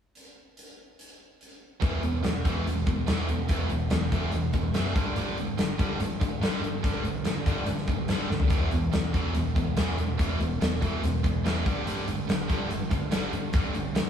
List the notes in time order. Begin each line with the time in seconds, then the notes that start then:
0.15 closed hi-hat
0.57 closed hi-hat
0.99 closed hi-hat
1.41 closed hi-hat
1.81 E1 E2 B2 E3, kick, closed hi-hat
2.03 E1 E2 B2, closed hi-hat
2.23 E1 E2 B2, snare, closed hi-hat
2.44 E1 E2 B2 E3, kick, closed hi-hat
2.66 E1 E2 B2, closed hi-hat
2.86 E1 E2 B2, kick, closed hi-hat
3.07 E1 E2 B2 E3, snare, closed hi-hat
3.29 E1 E2 B2, closed hi-hat
3.49 E1 E2 B2 E3, kick, closed hi-hat
3.70 E1 E2 B2, closed hi-hat
3.90 E1 E2 B2, snare, closed hi-hat
4.12 E1 E2 B2 E3, kick, closed hi-hat
4.32 E1 E2 B2, closed hi-hat
4.53 E1 E2 B2, kick, closed hi-hat
4.74 F#1 E2 B2 E3, snare, closed hi-hat
4.96 G1 G2 D3 G3, kick, closed hi-hat
5.16 G1 G2 D3 G3, closed hi-hat
5.38 G1 G2 D3, closed hi-hat
5.58 G1 G2 D3, snare, closed hi-hat
5.79 G1 G2 D3 G3, kick, closed hi-hat
6.00 G1 G2 D3, closed hi-hat
6.21 G1 G2 D3, kick, closed hi-hat
6.40 G1 G2 D3 G3, snare, closed hi-hat
6.62 G1 G2 D3, closed hi-hat
6.84 G1 G2 D3 G3, kick, closed hi-hat
7.04 G1 G2 D3, closed hi-hat
7.25 G1 G2 D3, snare, closed hi-hat
7.46 G1 G2 D3 G3, kick, closed hi-hat
7.66 G1 G2 D3, closed hi-hat
7.78 snare
7.87 G1 G2 D3, kick, closed hi-hat
8.08 G1 G2 D3 G3, snare, closed hi-hat
8.30 G1 G2 D3, snare
8.40 floor tom
8.50 E1 E2 B2 E3, kick, closed hi-hat
8.71 E1 E2 B2, closed hi-hat
8.93 E1 E2 B2, snare, closed hi-hat
9.14 E1 E2 B2 E3, kick, closed hi-hat
9.34 E1 E2 B2, closed hi-hat
9.56 E1 E2 B2, kick, closed hi-hat
9.77 E1 E2 B2 E3, snare, closed hi-hat
9.98 E1 E2 B2, closed hi-hat
10.19 E1 E2 B2 E3, kick, closed hi-hat
10.40 E1 E2 B2, closed hi-hat
10.61 E1 E2 B2, snare, closed hi-hat
10.82 E1 E2 B2 E3, kick, closed hi-hat
11.03 E1 E2 B2, closed hi-hat
11.24 E1 E2 B2, kick, closed hi-hat
11.45 E1 E2 B2 E3, snare, closed hi-hat
11.65 G1 G2 D3 G3, kick, closed hi-hat
11.87 G1 G2 D3 G3, closed hi-hat
12.08 G1 G2 D3, closed hi-hat
12.29 G1 G2 D3, snare, closed hi-hat
12.50 G1 G2 D3 G3, kick, closed hi-hat
12.70 G1 G2 D3, closed hi-hat
12.91 G1 G2 D3, kick, closed hi-hat
13.12 G1 G2 D3 G3, snare, closed hi-hat
13.33 G1 G2 D3, closed hi-hat
13.53 G1 G2 D3 G3, kick, closed hi-hat
13.74 G1 G2 D3, closed hi-hat
13.95 G1 G2 D3, snare, closed hi-hat